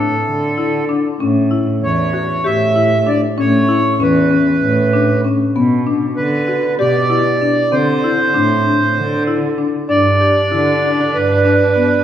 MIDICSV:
0, 0, Header, 1, 5, 480
1, 0, Start_track
1, 0, Tempo, 621118
1, 927, Time_signature, 7, 3, 24, 8
1, 9303, End_track
2, 0, Start_track
2, 0, Title_t, "Accordion"
2, 0, Program_c, 0, 21
2, 0, Note_on_c, 0, 69, 67
2, 655, Note_off_c, 0, 69, 0
2, 1415, Note_on_c, 0, 73, 76
2, 1893, Note_on_c, 0, 76, 92
2, 1907, Note_off_c, 0, 73, 0
2, 2379, Note_on_c, 0, 74, 77
2, 2386, Note_off_c, 0, 76, 0
2, 2485, Note_off_c, 0, 74, 0
2, 2624, Note_on_c, 0, 73, 88
2, 3104, Note_on_c, 0, 71, 68
2, 3111, Note_off_c, 0, 73, 0
2, 4026, Note_off_c, 0, 71, 0
2, 4763, Note_on_c, 0, 71, 77
2, 5215, Note_off_c, 0, 71, 0
2, 5250, Note_on_c, 0, 74, 98
2, 5969, Note_on_c, 0, 72, 91
2, 5990, Note_off_c, 0, 74, 0
2, 7137, Note_off_c, 0, 72, 0
2, 7645, Note_on_c, 0, 74, 91
2, 8609, Note_on_c, 0, 71, 80
2, 8635, Note_off_c, 0, 74, 0
2, 9298, Note_off_c, 0, 71, 0
2, 9303, End_track
3, 0, Start_track
3, 0, Title_t, "Marimba"
3, 0, Program_c, 1, 12
3, 0, Note_on_c, 1, 62, 63
3, 290, Note_off_c, 1, 62, 0
3, 445, Note_on_c, 1, 64, 65
3, 609, Note_off_c, 1, 64, 0
3, 687, Note_on_c, 1, 62, 64
3, 851, Note_off_c, 1, 62, 0
3, 930, Note_on_c, 1, 61, 76
3, 1093, Note_off_c, 1, 61, 0
3, 1165, Note_on_c, 1, 64, 59
3, 1494, Note_off_c, 1, 64, 0
3, 1649, Note_on_c, 1, 66, 64
3, 1813, Note_off_c, 1, 66, 0
3, 1888, Note_on_c, 1, 67, 69
3, 2052, Note_off_c, 1, 67, 0
3, 2130, Note_on_c, 1, 64, 65
3, 2293, Note_off_c, 1, 64, 0
3, 2369, Note_on_c, 1, 62, 68
3, 2533, Note_off_c, 1, 62, 0
3, 2610, Note_on_c, 1, 61, 79
3, 2773, Note_off_c, 1, 61, 0
3, 2849, Note_on_c, 1, 64, 67
3, 3013, Note_off_c, 1, 64, 0
3, 3092, Note_on_c, 1, 61, 72
3, 3255, Note_off_c, 1, 61, 0
3, 3328, Note_on_c, 1, 61, 68
3, 3656, Note_off_c, 1, 61, 0
3, 3813, Note_on_c, 1, 62, 64
3, 3975, Note_off_c, 1, 62, 0
3, 4053, Note_on_c, 1, 61, 65
3, 4215, Note_off_c, 1, 61, 0
3, 4295, Note_on_c, 1, 59, 82
3, 4457, Note_off_c, 1, 59, 0
3, 4534, Note_on_c, 1, 62, 64
3, 4859, Note_off_c, 1, 62, 0
3, 5008, Note_on_c, 1, 66, 68
3, 5171, Note_off_c, 1, 66, 0
3, 5247, Note_on_c, 1, 67, 77
3, 5411, Note_off_c, 1, 67, 0
3, 5485, Note_on_c, 1, 64, 68
3, 5649, Note_off_c, 1, 64, 0
3, 5730, Note_on_c, 1, 62, 69
3, 5892, Note_off_c, 1, 62, 0
3, 5967, Note_on_c, 1, 60, 81
3, 6130, Note_off_c, 1, 60, 0
3, 6212, Note_on_c, 1, 64, 67
3, 6374, Note_off_c, 1, 64, 0
3, 6448, Note_on_c, 1, 62, 72
3, 6611, Note_off_c, 1, 62, 0
3, 6692, Note_on_c, 1, 62, 65
3, 7017, Note_off_c, 1, 62, 0
3, 7166, Note_on_c, 1, 64, 65
3, 7330, Note_off_c, 1, 64, 0
3, 7404, Note_on_c, 1, 62, 62
3, 7568, Note_off_c, 1, 62, 0
3, 7645, Note_on_c, 1, 62, 69
3, 7809, Note_off_c, 1, 62, 0
3, 7887, Note_on_c, 1, 67, 52
3, 8050, Note_off_c, 1, 67, 0
3, 8127, Note_on_c, 1, 64, 65
3, 8290, Note_off_c, 1, 64, 0
3, 8367, Note_on_c, 1, 62, 60
3, 8694, Note_off_c, 1, 62, 0
3, 8848, Note_on_c, 1, 62, 61
3, 9012, Note_off_c, 1, 62, 0
3, 9087, Note_on_c, 1, 59, 60
3, 9251, Note_off_c, 1, 59, 0
3, 9303, End_track
4, 0, Start_track
4, 0, Title_t, "Viola"
4, 0, Program_c, 2, 41
4, 7649, Note_on_c, 2, 62, 69
4, 9303, Note_off_c, 2, 62, 0
4, 9303, End_track
5, 0, Start_track
5, 0, Title_t, "Cello"
5, 0, Program_c, 3, 42
5, 0, Note_on_c, 3, 45, 71
5, 110, Note_off_c, 3, 45, 0
5, 209, Note_on_c, 3, 50, 80
5, 783, Note_off_c, 3, 50, 0
5, 930, Note_on_c, 3, 45, 79
5, 1312, Note_off_c, 3, 45, 0
5, 1411, Note_on_c, 3, 40, 80
5, 1793, Note_off_c, 3, 40, 0
5, 1894, Note_on_c, 3, 45, 81
5, 2466, Note_off_c, 3, 45, 0
5, 2617, Note_on_c, 3, 45, 84
5, 2996, Note_off_c, 3, 45, 0
5, 3094, Note_on_c, 3, 40, 79
5, 3475, Note_off_c, 3, 40, 0
5, 3571, Note_on_c, 3, 45, 89
5, 4144, Note_off_c, 3, 45, 0
5, 4291, Note_on_c, 3, 47, 85
5, 4672, Note_off_c, 3, 47, 0
5, 4771, Note_on_c, 3, 50, 81
5, 5152, Note_off_c, 3, 50, 0
5, 5247, Note_on_c, 3, 47, 86
5, 5820, Note_off_c, 3, 47, 0
5, 5967, Note_on_c, 3, 50, 84
5, 6349, Note_off_c, 3, 50, 0
5, 6447, Note_on_c, 3, 45, 80
5, 6829, Note_off_c, 3, 45, 0
5, 6928, Note_on_c, 3, 50, 83
5, 7501, Note_off_c, 3, 50, 0
5, 7649, Note_on_c, 3, 43, 74
5, 8031, Note_off_c, 3, 43, 0
5, 8124, Note_on_c, 3, 50, 78
5, 8507, Note_off_c, 3, 50, 0
5, 8605, Note_on_c, 3, 43, 76
5, 9180, Note_off_c, 3, 43, 0
5, 9303, End_track
0, 0, End_of_file